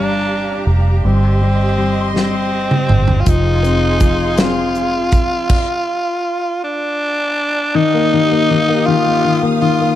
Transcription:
Already playing: fingered electric bass G1, felt piano G3, tenor saxophone D4, string section G4 F5 A#5
0.67 fingered electric bass F1
1.04 fingered electric bass G1, felt piano G3, tenor saxophone C4, string section D#5 C6
1.41 felt piano G3
1.78 felt piano G3
2.14 felt piano G3, tenor saxophone C4, snare
2.71 mid tom
2.89 fingered electric bass G1, mid tom
3.08 floor tom
3.21 tenor saxophone F4
3.25 fingered electric bass F1, felt piano F3, tenor saxophone D#4, string section G#4 F5 C6, kick, closed hi-hat
3.63 felt piano C4, closed hi-hat
4.00 felt piano F3, kick, closed hi-hat
4.38 felt piano C4, tenor saxophone F4, snare, closed hi-hat
4.75 closed hi-hat
5.12 fingered electric bass G#1, kick, closed hi-hat
5.50 kick, crash
6.64 tenor saxophone D4
7.75 felt piano D#3, tenor saxophone D#4, string section G4 F5 D#6
7.94 felt piano A#3
8.13 felt piano D#3
8.31 felt piano A#3
8.51 felt piano D#3
8.69 felt piano A#3
8.86 felt piano D#3, tenor saxophone F4
9.06 felt piano A#3
9.25 felt piano D#3
9.42 felt piano A#3
9.61 felt piano D#3, tenor saxophone F4
9.80 felt piano A#3

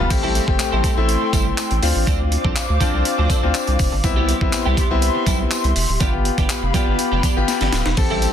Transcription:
0.10 sub bass A1, grand piano A3 C4 G4, analog synth pad A4 G5 C6, muted clean electric guitar stroke, kick, closed hi-hat, crash, tambourine
0.23 clean electric guitar G3 C4 E4 A4
0.35 clean electric guitar G3 C4 E4 A4, closed hi-hat, tambourine
0.48 sub bass G1, grand piano A3 C4 G4, muted clean electric guitar stroke, kick
0.59 muted clean electric guitar stroke, clap, closed hi-hat, tambourine
0.72 sub bass A1, clean electric guitar G3 C4 E4 A4
0.84 clean electric guitar G3 C4 E4 A4, kick, closed hi-hat, tambourine
0.97 sub bass A1, grand piano A3 C4 E4, muted clean electric guitar stroke
1.09 closed hi-hat, tambourine
1.22 muted clean electric guitar stroke
1.33 sub bass G1, clean electric guitar G3 C4 E4 A4, kick, closed hi-hat, tambourine
1.46 muted clean electric guitar stroke
1.58 muted clean electric guitar stroke, clap, closed hi-hat, tambourine
1.71 sub bass A1, muted clean electric guitar stroke, closed hi-hat
1.82 sub bass D2, grand piano C4 D4 F4, analog synth pad C5 F5 D6, open hi-hat, tambourine
1.95 sub bass A1, muted clean electric guitar stroke
2.07 sub bass D2, clean electric guitar F3 C4 D4 A4, kick, closed hi-hat, tambourine
2.20 muted clean electric guitar stroke
2.31 muted clean electric guitar stroke, closed hi-hat
2.44 sub bass C2, clean electric guitar F3 C4 D4 A4, kick
2.56 muted clean electric guitar stroke, clap, closed hi-hat, tambourine
2.69 sub bass D2, muted clean electric guitar stroke
2.80 clean electric guitar F3 C4 D4 A4, grand piano C4 D4 F4, kick, closed hi-hat, tambourine
2.93 sub bass C2, clean electric guitar F3 C4 D4 A4
3.05 muted clean electric guitar stroke, closed hi-hat, tambourine
3.18 sub bass D2, clean electric guitar F3 C4 D4 A4
3.30 clean electric guitar F3 C4 D4 A4, kick, closed hi-hat, tambourine
3.43 sub bass D2, grand piano C4 D4 F4, muted clean electric guitar stroke
3.54 muted clean electric guitar stroke, clap, closed hi-hat, tambourine
3.67 sub bass C2, muted clean electric guitar stroke, closed hi-hat
3.79 sub bass F1, kick, open hi-hat, tambourine
3.92 sub bass G1, muted clean electric guitar stroke
4.04 sub bass C2, grand piano B3 C4 E4, analog synth pad G4 E5 C6, muted clean electric guitar stroke, kick, closed hi-hat, tambourine
4.16 clean electric guitar G3 B3 E4 G4
4.28 clean electric guitar G3 B3 E4 G4, closed hi-hat
4.41 sub bass B1, grand piano B3 C4 E4, muted clean electric guitar stroke, kick
4.53 muted clean electric guitar stroke, clap, closed hi-hat, tambourine
4.66 sub bass C2, clean electric guitar G3 B3 E4 G4
4.77 clean electric guitar G3 B3 E4 G4, kick, closed hi-hat, tambourine
4.90 sub bass C2, grand piano B3 C4 E4, muted clean electric guitar stroke
5.02 closed hi-hat, tambourine
5.15 muted clean electric guitar stroke
5.26 sub bass B1, clean electric guitar G3 B3 E4 G4, kick, closed hi-hat, tambourine
5.40 muted clean electric guitar stroke
5.51 muted clean electric guitar stroke, clap, closed hi-hat, tambourine
5.64 sub bass C2, muted clean electric guitar stroke, closed hi-hat
5.76 sub bass E1, open hi-hat, tambourine
5.89 sub bass D1, muted clean electric guitar stroke
6.00 sub bass G1, clean electric guitar F3 B3 D4 G4, grand piano B3 F4 G4, analog synth pad G4 F5 B5, kick, closed hi-hat, tambourine
6.13 muted clean electric guitar stroke
6.25 muted clean electric guitar stroke, closed hi-hat
6.38 sub bass G1, clean electric guitar F3 B3 D4 G4, kick, closed hi-hat
6.49 muted clean electric guitar stroke, clap, closed hi-hat, tambourine
6.63 sub bass F1, muted clean electric guitar stroke
6.74 clean electric guitar F3 B3 D4 G4, grand piano B3 F4 G4, kick, closed hi-hat, tambourine
6.87 sub bass G1, clean electric guitar F3 B3 D4 G4
6.99 muted clean electric guitar stroke, closed hi-hat, tambourine
7.12 sub bass F1, clean electric guitar F3 B3 D4 G4
7.23 clean electric guitar F3 B3 D4 G4, kick, closed hi-hat, tambourine
7.36 sub bass G1, grand piano B3 F4 G4, muted clean electric guitar stroke
7.48 muted clean electric guitar stroke, snare, closed hi-hat, tambourine
7.61 sub bass G1, clean electric guitar F3 B3 D4 G4, snare, closed hi-hat
7.72 sub bass D1, muted clean electric guitar stroke, snare, closed hi-hat, tambourine
7.86 sub bass E1, muted clean electric guitar stroke, snare
7.97 sub bass A1, grand piano C4 G4 A4, analog synth pad A4 G5 C6, muted clean electric guitar stroke, kick, crash, tambourine
8.11 clean electric guitar G3 C4 E4 A4
8.22 clean electric guitar G3 C4 E4 A4, closed hi-hat, tambourine

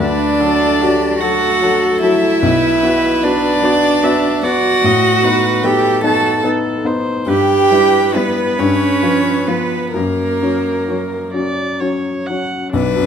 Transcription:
Already playing: cello D4, violin D5
0.00 grand piano D2, viola B4
0.40 grand piano F#3 F#4 A4, viola A4
0.81 grand piano F#3 F#4 A4, viola G4
1.20 grand piano F#3 F#4 A4, cello F#4, viola A4, violin F#5
1.61 grand piano F#3 F#4 A4
2.01 grand piano F#3 F#4 A4, cello E4, violin E5
2.43 grand piano B1, viola B4
2.83 grand piano B3 F#4 B4
3.23 grand piano B3 F#4 B4, cello D4, violin D5
3.62 grand piano B3 F#4 B4, viola D5
4.03 grand piano B3 F#4 B4, viola E5
4.42 grand piano B3 F#4 B4, cello F#4, viola D5, violin F#5
4.84 grand piano A2, viola D#5
5.24 grand piano B3 D#4 B4, viola B4
5.63 grand piano B3 D#4 B4, cello G4, viola A4, violin G5
6.04 grand piano B3 D#4 B4, viola F#4, cello A4, violin A5
6.44 grand piano B3 D#4 B4, viola A4
6.85 grand piano B3 D#4 B4, viola C5
7.26 grand piano G2, cello G4, viola B4, violin G5
7.71 grand piano G3 E4 B4
8.15 grand piano G3 E4 B4, cello B3, violin B4
8.59 grand piano G2, cello C#4, violin C#5
9.02 grand piano F3 F4 B4
9.48 grand piano F3 F4 B4, cello B3, violin B4
9.92 grand piano F#2, cello A#3, violin A#4, viola A#4
10.41 grand piano F#3 C#4 C#5
10.88 grand piano F#3 C#4 C#5
11.33 grand piano F#3 C#4 C#5, viola D5
11.80 grand piano F#3 C#4 C#5, viola C#5
12.26 grand piano F#3 C#4, viola F#5
12.30 grand piano C#5
12.73 grand piano B1, cello F#3, viola D4, violin B4
12.96 grand piano F#2

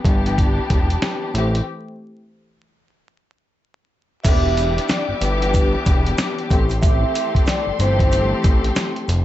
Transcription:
0.04 analog synth bass G1, string section E3 B3 D4 G4, kick, closed hi-hat
0.26 closed hi-hat
0.38 kick, closed hi-hat
0.70 analog synth bass E1, kick, closed hi-hat
0.90 closed hi-hat
1.02 snare, closed hi-hat
1.34 analog synth bass A1, string section E3 A3 C4 G4, closed hi-hat
1.55 closed hi-hat
4.24 analog synth bass E1, string section E3 B3 D4 G4 E5 D6, vibraphone E5, kick, closed hi-hat, crash, shaker
4.28 string section G4
4.57 closed hi-hat, shaker
4.78 closed hi-hat
4.89 vibraphone D5, snare, closed hi-hat, shaker
5.08 analog synth bass G1
5.20 analog synth bass G1, string section E3 B3 D4 G4, vibraphone B4, closed hi-hat, shaker
5.42 closed hi-hat
5.54 kick, closed hi-hat, shaker
5.86 analog synth bass E1, kick, closed hi-hat, shaker
6.06 closed hi-hat
6.18 snare, closed hi-hat, shaker
6.38 closed hi-hat
6.50 analog synth bass A1, string section E3 A3 C4 G4 A4 G5 C6, kick, closed hi-hat, shaker
6.70 closed hi-hat, shaker
6.81 string section E3 A3 C4 G4, vibraphone E5, kick, closed hi-hat, shaker
7.15 closed hi-hat, shaker
7.35 kick, closed hi-hat
7.46 vibraphone D5, snare, closed hi-hat, shaker
7.67 analog synth bass G1
7.78 analog synth bass G1, string section E3 A3 C4 G4, vibraphone C5, closed hi-hat, shaker
7.99 kick, closed hi-hat
8.12 closed hi-hat, shaker
8.44 analog synth bass A1, kick, closed hi-hat, shaker
8.64 closed hi-hat
8.76 snare, closed hi-hat, shaker
8.96 closed hi-hat
9.08 analog synth bass F1, closed hi-hat, shaker

